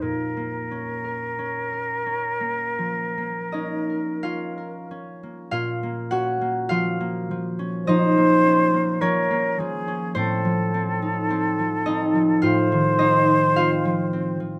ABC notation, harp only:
X:1
M:4/4
L:1/16
Q:1/4=52
K:Bbm
V:1 name="Harp"
z8 z2 [Ee]2 [Ff]4 | [Ff]2 [Gg]2 [Ff]4 [Ee]4 [Dd]4 | [Cc]6 [Ee]2 [Ff]2 [Ee]2 [Ff]4 |]
V:2 name="Harp"
B,, B, D B D B D B, F, B, D B D B D B, | B,, B, D B, F, B, F, D F, B, D B, F, B, F, D | =A,, F, C E C F, C F, A,, E, C E C F, C F, |]